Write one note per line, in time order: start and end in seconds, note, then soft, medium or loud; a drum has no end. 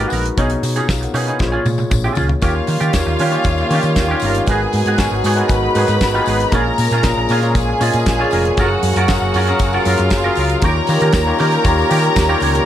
0.00 0.39 G#3 medium
0.00 0.10 B3 medium
0.00 0.37 D#4 medium
0.00 0.11 F#4 medium
0.00 0.39 F#4 medium
0.00 0.13 G#4 medium
0.00 0.39 A#4 medium
0.00 0.39 B4 loud
0.10 0.29 A#1 medium
0.10 0.26 B3 medium
0.10 0.25 F#4 medium
0.10 0.25 A#4 medium
0.10 open hi-hat medium
0.10 tambourine medium
0.25 muted clean electric guitar stroke soft
0.25 closed hi-hat soft
0.37 0.54 B1 loud
0.37 0.59 B2 medium
0.37 0.59 B3 medium
0.37 0.56 C#4 medium
0.37 0.59 D#4 medium
0.37 0.52 D#4 medium
0.37 0.59 G#4 medium
0.37 0.51 G#4 medium
0.37 0.60 C#5 medium
0.37 kick loud
0.37 closed hi-hat medium
0.37 tambourine soft
0.50 muted clean electric guitar stroke soft
0.50 closed hi-hat soft
0.63 0.80 B2 loud
0.63 0.76 F#4 medium
0.63 0.75 D#5 medium
0.63 muted clean electric guitar stroke soft
0.63 open hi-hat medium
0.63 tambourine medium
0.76 0.87 C#4 medium
0.76 0.87 D#4 medium
0.76 0.89 F4 medium
0.76 0.88 G#4 medium
0.76 0.88 C#5 medium
0.76 closed hi-hat soft
0.76 tambourine soft
0.89 1.06 B1 medium
0.89 1.02 G#4 medium
0.89 1.02 F5 medium
0.89 kick loud
0.89 snare loud
0.89 tambourine medium
1.01 1.15 A#4 medium
1.01 1.15 F#5 medium
1.01 muted clean electric guitar stroke soft
1.01 closed hi-hat soft
1.14 1.31 B2 medium
1.14 1.28 C#4 medium
1.14 1.27 D#4 medium
1.14 1.26 G#4 medium
1.14 1.28 B4 medium
1.14 1.28 G#5 medium
1.14 open hi-hat medium
1.14 tambourine medium
1.27 1.39 C#4 medium
1.27 1.41 D#4 medium
1.27 1.40 G#4 medium
1.27 1.52 D#5 soft
1.27 1.52 B5 medium
1.27 closed hi-hat soft
1.39 1.57 A#1 loud
1.39 2.28 A#2 medium
1.39 2.28 A#3 medium
1.39 2.28 F4 medium
1.39 2.28 G#4 medium
1.39 1.47 C5 medium
1.39 muted clean electric guitar stroke soft
1.39 kick loud
1.39 snare medium
1.39 tambourine medium
1.48 2.32 C#5 loud
1.52 1.65 C#4 medium
1.52 1.65 F4 medium
1.52 1.66 G#4 medium
1.65 1.82 A#2 loud
1.65 muted clean electric guitar stroke soft
1.65 high tom medium
1.65 tambourine medium
1.78 muted clean electric guitar stroke soft
1.78 high tom medium
1.78 tambourine soft
1.90 2.08 A#1 medium
1.90 muted clean electric guitar stroke soft
1.90 kick loud
1.90 mid tom medium
1.90 tambourine medium
2.04 2.15 C#4 medium
2.04 2.16 F4 medium
2.04 2.17 G#4 medium
2.15 2.33 C#2 medium
2.15 2.31 C#4 medium
2.15 2.28 F4 medium
2.15 2.27 G#4 medium
2.15 floor tom loud
2.15 tambourine medium
2.29 muted clean electric guitar stroke soft
2.29 floor tom medium
2.42 2.59 D#2 loud
2.42 2.86 D#3 medium
2.42 4.46 D#3 medium
2.42 4.45 G3 medium
2.42 2.86 A#3 medium
2.42 4.46 A#3 medium
2.42 2.60 C#4 medium
2.42 4.45 C#4 medium
2.42 4.45 F4 medium
2.42 2.86 F4 medium
2.42 2.55 F4 medium
2.42 4.44 F4 medium
2.42 2.87 G4 medium
2.42 2.54 G4 medium
2.42 2.87 C#5 medium
2.42 4.44 F5 medium
2.42 kick loud
2.42 closed hi-hat medium
2.42 tambourine medium
2.55 muted clean electric guitar stroke soft
2.67 2.76 D#3 loud
2.67 muted clean electric guitar stroke soft
2.67 open hi-hat medium
2.67 tambourine medium
2.80 2.89 D#3 medium
2.80 2.92 C#4 medium
2.80 2.93 F4 medium
2.80 2.93 G4 medium
2.80 closed hi-hat soft
2.80 tambourine soft
2.93 3.02 D#2 medium
2.93 3.27 D#3 medium
2.93 3.27 A#3 medium
2.93 3.27 F4 medium
2.93 3.27 G4 medium
2.93 3.27 C#5 medium
2.93 muted clean electric guitar stroke soft
2.93 kick loud
2.93 snare loud
2.93 closed hi-hat medium
2.93 tambourine medium
3.06 3.15 D#2 medium
3.06 muted clean electric guitar stroke medium
3.19 3.36 D#3 medium
3.19 3.34 C#4 medium
3.19 3.33 F4 loud
3.19 3.33 G4 medium
3.19 open hi-hat medium
3.19 tambourine soft
3.31 3.65 D#3 medium
3.31 3.65 A#3 medium
3.31 3.65 F4 medium
3.31 3.46 F4 medium
3.31 3.65 G4 medium
3.31 3.47 G4 medium
3.31 3.65 C#5 loud
3.31 closed hi-hat soft
3.31 tambourine soft
3.35 3.46 C#4 soft
3.44 3.62 D#2 medium
3.44 kick loud
3.44 closed hi-hat medium
3.44 tambourine medium
3.58 muted clean electric guitar stroke soft
3.58 tambourine soft
3.69 4.03 D#3 medium
3.69 3.79 D#3 medium
3.69 4.03 A#3 medium
3.69 3.90 C#4 medium
3.69 4.03 F4 medium
3.69 4.03 G4 medium
3.69 4.04 C#5 medium
3.69 open hi-hat medium
3.69 tambourine soft
3.74 3.86 F4 medium
3.74 3.84 G4 medium
3.83 3.98 D#3 loud
3.83 muted clean electric guitar stroke soft
3.83 closed hi-hat soft
3.83 tambourine soft
3.96 4.13 D#2 medium
3.96 muted clean electric guitar stroke soft
3.96 kick loud
3.96 snare loud
3.96 closed hi-hat medium
3.96 tambourine medium
4.07 4.41 D#3 medium
4.07 4.41 A#3 medium
4.07 4.42 F4 medium
4.07 4.42 G4 medium
4.07 4.26 G4 medium
4.07 4.42 C#5 medium
4.12 4.23 C#4 medium
4.12 4.24 F4 medium
4.20 4.39 G1 medium
4.20 open hi-hat medium
4.20 tambourine medium
4.24 4.37 C#4 medium
4.24 4.37 F4 medium
4.24 4.37 A#4 medium
4.35 muted clean electric guitar stroke soft
4.35 closed hi-hat soft
4.46 4.64 G#1 loud
4.46 6.50 D#3 medium
4.46 6.51 F#3 medium
4.46 4.91 G#3 medium
4.46 8.54 G#3 medium
4.46 6.51 B3 medium
4.46 4.67 B3 medium
4.46 4.91 D#4 medium
4.46 4.91 F#4 medium
4.46 6.50 F#4 medium
4.46 5.48 G#4 medium
4.46 4.91 A#4 medium
4.46 4.92 B4 medium
4.46 5.48 G#5 medium
4.46 kick loud
4.46 closed hi-hat medium
4.46 tambourine medium
4.51 4.63 F#4 medium
4.51 4.61 G#4 loud
4.62 muted clean electric guitar stroke soft
4.73 4.82 G#2 loud
4.73 muted clean electric guitar stroke soft
4.73 open hi-hat medium
4.73 tambourine medium
4.86 4.94 G#2 medium
4.86 4.99 B3 soft
4.86 5.00 F#4 medium
4.86 5.01 G#4 medium
4.86 closed hi-hat soft
4.98 5.07 G#1 loud
4.98 5.31 G#3 medium
4.98 5.31 D#4 medium
4.98 5.32 F#4 medium
4.98 5.32 A#4 medium
4.98 5.32 C#5 medium
4.98 muted clean electric guitar stroke soft
4.98 kick loud
4.98 snare loud
4.98 closed hi-hat soft
4.98 tambourine medium
5.11 5.20 G#1 medium
5.11 muted clean electric guitar stroke medium
5.24 5.41 G#2 medium
5.24 5.39 B3 medium
5.24 5.38 F#4 medium
5.24 5.38 G#4 medium
5.24 open hi-hat medium
5.24 tambourine medium
5.36 5.69 G#3 medium
5.36 5.69 D#4 medium
5.36 5.70 F#4 medium
5.36 5.50 F#4 medium
5.36 5.51 G#4 medium
5.36 5.70 A#4 medium
5.36 5.70 B4 medium
5.36 closed hi-hat soft
5.36 tambourine soft
5.40 5.49 B3 soft
5.49 5.66 G#1 loud
5.49 6.51 B4 medium
5.49 6.51 B5 medium
5.49 muted clean electric guitar stroke soft
5.49 kick loud
5.49 closed hi-hat medium
5.49 tambourine medium
5.63 muted clean electric guitar stroke soft
5.74 5.84 G#2 medium
5.74 6.08 G#3 medium
5.74 5.94 B3 medium
5.74 6.08 D#4 medium
5.74 6.08 F#4 medium
5.74 5.89 F#4 medium
5.74 6.09 G#4 medium
5.74 6.09 B4 loud
5.74 open hi-hat medium
5.74 tambourine medium
5.78 5.88 G#4 medium
5.88 5.97 G#2 medium
5.88 muted clean electric guitar stroke soft
5.88 closed hi-hat soft
5.88 tambourine soft
6.01 6.18 G#1 medium
6.01 muted clean electric guitar stroke soft
6.01 kick loud
6.01 snare loud
6.01 closed hi-hat medium
6.01 tambourine medium
6.13 6.46 G#3 medium
6.13 6.27 B3 medium
6.13 6.47 D#4 medium
6.13 6.47 F#4 medium
6.13 6.27 F#4 medium
6.13 6.28 G#4 medium
6.13 6.47 G#4 medium
6.13 6.47 B4 medium
6.26 6.44 G#1 medium
6.26 6.41 B3 medium
6.26 6.41 F#4 medium
6.26 6.40 G#4 medium
6.26 open hi-hat medium
6.26 tambourine medium
6.40 muted clean electric guitar stroke soft
6.40 closed hi-hat soft
6.51 6.69 A#1 loud
6.51 6.96 A#2 medium
6.51 10.46 C#3 medium
6.51 8.55 A#3 medium
6.51 6.96 A#3 medium
6.51 6.71 C#4 medium
6.51 6.96 F4 medium
6.51 6.67 F4 medium
6.51 10.46 G#4 medium
6.51 6.96 G#4 medium
6.51 7.53 A#4 medium
6.51 6.97 C#5 medium
6.51 7.53 A#5 medium
6.51 kick loud
6.51 closed hi-hat medium
6.51 tambourine medium
6.56 6.66 G#4 medium
6.67 muted clean electric guitar stroke soft
6.78 6.87 A#2 medium
6.78 muted clean electric guitar stroke soft
6.78 open hi-hat medium
6.78 tambourine medium
6.91 6.99 A#2 medium
6.91 7.05 C#4 medium
6.91 7.05 F4 medium
6.91 7.06 G#4 medium
6.91 closed hi-hat soft
6.91 tambourine soft
7.02 7.12 A#1 medium
7.02 7.36 A#2 medium
7.02 7.36 A#3 medium
7.02 7.37 F4 medium
7.02 7.37 G#4 medium
7.02 7.37 A#4 medium
7.02 muted clean electric guitar stroke soft
7.02 kick loud
7.02 snare loud
7.02 closed hi-hat medium
7.02 tambourine medium
7.17 7.25 A#1 loud
7.17 muted clean electric guitar stroke soft
7.29 7.57 A#2 medium
7.29 7.44 C#4 medium
7.29 7.43 F4 loud
7.29 7.42 G#4 loud
7.29 open hi-hat medium
7.29 tambourine medium
7.42 7.75 A#2 medium
7.42 7.75 A#3 medium
7.42 7.55 C#4 medium
7.42 7.75 F4 medium
7.42 7.55 F4 medium
7.42 7.56 G#4 medium
7.42 7.76 G#4 medium
7.42 7.76 C#5 medium
7.42 closed hi-hat soft
7.42 tambourine soft
7.55 7.72 A#1 loud
7.55 8.56 G#4 medium
7.55 8.56 G#5 medium
7.55 muted clean electric guitar stroke soft
7.55 kick loud
7.55 closed hi-hat medium
7.55 tambourine medium
7.69 muted clean electric guitar stroke soft
7.80 8.14 A#2 medium
7.80 7.89 A#2 medium
7.80 8.14 A#3 medium
7.80 7.99 C#4 medium
7.80 8.14 F4 medium
7.80 7.94 F4 medium
7.80 8.14 G#4 medium
7.80 7.92 G#4 medium
7.80 8.14 D#5 loud
7.80 open hi-hat medium
7.80 tambourine medium
7.93 8.02 A#2 loud
7.93 muted clean electric guitar stroke soft
7.93 closed hi-hat soft
7.93 tambourine soft
8.06 8.23 A#1 medium
8.06 muted clean electric guitar stroke soft
8.06 kick loud
8.06 snare loud
8.06 closed hi-hat medium
8.06 tambourine medium
8.19 8.52 A#2 medium
8.19 8.52 A#3 medium
8.19 8.31 C#4 medium
8.19 8.52 F4 medium
8.19 8.32 F4 medium
8.19 8.34 G#4 medium
8.19 8.53 G#4 medium
8.19 8.53 C#5 loud
8.31 8.49 F1 medium
8.31 8.46 C#4 medium
8.31 8.45 F4 medium
8.31 8.44 A#4 medium
8.31 open hi-hat medium
8.31 tambourine soft
8.45 muted clean electric guitar stroke soft
8.45 closed hi-hat soft
8.57 8.74 F#1 loud
8.57 9.01 F#3 medium
8.57 10.46 F#3 medium
8.57 10.46 A#3 medium
8.57 9.02 C#4 medium
8.57 8.76 C#4 medium
8.57 8.71 F4 medium
8.57 9.02 F#4 medium
8.57 9.84 F#4 medium
8.57 9.02 G#4 medium
8.57 8.64 A4 medium
8.57 8.69 A#4 loud
8.57 9.84 F#5 medium
8.57 kick loud
8.57 closed hi-hat medium
8.57 tambourine soft
8.65 9.05 A#4 loud
8.70 muted clean electric guitar stroke medium
8.83 8.91 F#2 loud
8.83 muted clean electric guitar stroke soft
8.83 open hi-hat medium
8.83 tambourine medium
8.96 9.04 F#2 medium
8.96 9.09 C#4 medium
8.96 9.10 F4 medium
8.96 9.11 A#4 medium
8.96 closed hi-hat soft
8.96 tambourine soft
9.08 9.17 F#1 loud
9.08 9.42 F#3 medium
9.08 9.42 C#4 medium
9.08 9.42 F#4 medium
9.08 9.42 G#4 medium
9.08 9.42 A#4 medium
9.08 muted clean electric guitar stroke soft
9.08 kick loud
9.08 snare loud
9.08 closed hi-hat medium
9.08 tambourine medium
9.21 9.30 F#1 loud
9.21 muted clean electric guitar stroke medium
9.34 9.51 F#2 loud
9.34 9.49 C#4 medium
9.34 9.48 F4 medium
9.34 9.47 A#4 medium
9.34 open hi-hat medium
9.34 tambourine medium
9.47 9.80 F#3 medium
9.47 9.81 C#4 medium
9.47 9.60 C#4 medium
9.47 9.61 F4 medium
9.47 9.81 F#4 medium
9.47 9.81 G#4 medium
9.47 9.61 A#4 medium
9.47 9.81 A#4 medium
9.47 closed hi-hat soft
9.47 tambourine soft
9.59 9.77 F#1 loud
9.59 muted clean electric guitar stroke soft
9.59 kick loud
9.59 closed hi-hat medium
9.59 tambourine medium
9.73 9.85 C#4 medium
9.73 9.86 F4 medium
9.73 9.87 A#4 medium
9.73 tambourine soft
9.85 9.94 F#2 loud
9.85 10.19 F#3 medium
9.85 10.19 C#4 medium
9.85 10.00 C#4 medium
9.85 10.61 F4 medium
9.85 10.19 F4 medium
9.85 10.00 F4 medium
9.85 10.19 G#4 medium
9.85 10.20 A#4 medium
9.85 9.99 A#4 medium
9.85 10.61 F5 medium
9.85 open hi-hat medium
9.85 tambourine medium
9.98 10.07 F#2 loud
9.98 muted clean electric guitar stroke medium
9.98 closed hi-hat soft
10.10 10.28 F#1 medium
10.10 muted clean electric guitar stroke soft
10.10 kick loud
10.10 snare loud
10.10 closed hi-hat medium
10.10 tambourine medium
10.24 10.57 F#3 medium
10.24 10.57 C#4 medium
10.24 10.37 C#4 medium
10.24 10.58 F4 medium
10.24 10.37 F4 medium
10.24 10.58 G#4 medium
10.24 10.38 A#4 medium
10.24 10.58 A#4 medium
10.35 10.54 C#2 medium
10.35 10.52 C#4 medium
10.35 10.51 F4 medium
10.35 open hi-hat medium
10.35 tambourine medium
10.39 10.50 A#4 medium
10.49 muted clean electric guitar stroke soft
10.49 closed hi-hat medium
10.61 10.79 D#2 loud
10.61 10.85 D#3 medium
10.61 12.65 D#3 medium
10.61 12.65 G3 medium
10.61 10.85 A#3 medium
10.61 12.65 A#3 medium
10.61 12.65 C#4 medium
10.61 10.81 C#4 medium
10.61 10.85 F4 medium
10.61 12.65 G4 medium
10.61 10.85 G4 medium
10.61 10.77 G4 medium
10.61 12.65 A#4 loud
10.61 10.76 A#4 medium
10.61 10.85 C#5 loud
10.61 12.65 A#5 loud
10.61 kick loud
10.61 closed hi-hat medium
10.61 tambourine soft
10.77 muted clean electric guitar stroke soft
10.87 11.21 D#3 medium
10.87 10.97 D#3 loud
10.87 11.22 A#3 medium
10.87 11.22 F4 medium
10.87 11.22 G4 medium
10.87 11.22 C#5 medium
10.87 muted clean electric guitar stroke soft
10.87 open hi-hat medium
10.87 tambourine medium
11.00 11.10 D#3 medium
11.00 11.14 C#4 soft
11.00 11.15 G4 soft
11.00 11.15 A#4 medium
11.00 closed hi-hat soft
11.13 11.31 D#2 medium
11.13 kick loud
11.13 snare loud
11.13 closed hi-hat medium
11.13 tambourine medium
11.26 11.59 D#3 medium
11.26 11.60 A#3 medium
11.26 11.60 F4 medium
11.26 11.60 G4 medium
11.26 11.60 C#5 medium
11.26 muted clean electric guitar stroke soft
11.38 11.57 D#3 loud
11.38 11.53 C#4 medium
11.38 11.52 G4 medium
11.38 11.51 A#4 loud
11.38 open hi-hat medium
11.38 tambourine medium
11.51 11.64 C#4 soft
11.51 11.65 G4 medium
11.51 11.65 A#4 medium
11.51 closed hi-hat soft
11.51 tambourine soft
11.64 11.82 D#2 loud
11.64 11.87 D#3 medium
11.64 11.87 A#3 medium
11.64 11.87 F4 medium
11.64 11.87 G4 medium
11.64 11.87 C#5 loud
11.64 muted clean electric guitar stroke soft
11.64 kick loud
11.64 closed hi-hat medium
11.64 tambourine medium
11.78 muted clean electric guitar stroke soft
11.78 tambourine soft
11.89 12.23 D#3 medium
11.89 12.08 D#3 loud
11.89 12.23 A#3 medium
11.89 12.09 C#4 medium
11.89 12.23 F4 medium
11.89 12.23 G4 medium
11.89 12.03 G4 medium
11.89 12.02 A#4 medium
11.89 12.24 C#5 loud
11.89 open hi-hat medium
11.89 tambourine medium
12.03 muted clean electric guitar stroke medium
12.03 closed hi-hat soft
12.16 12.33 D#2 medium
12.16 muted clean electric guitar stroke medium
12.16 kick loud
12.16 snare loud
12.16 closed hi-hat medium
12.16 tambourine medium
12.28 12.61 D#3 medium
12.28 12.62 A#3 medium
12.28 12.40 C#4 medium
12.28 12.62 F4 medium
12.28 12.62 G4 medium
12.28 12.41 G4 medium
12.28 12.43 A#4 medium
12.28 12.62 C#5 loud
12.40 12.58 C#2 loud
12.40 12.56 C#4 medium
12.40 12.55 G4 medium
12.40 12.55 C#5 medium
12.40 open hi-hat medium
12.40 tambourine medium
12.55 muted clean electric guitar stroke medium
12.55 closed hi-hat medium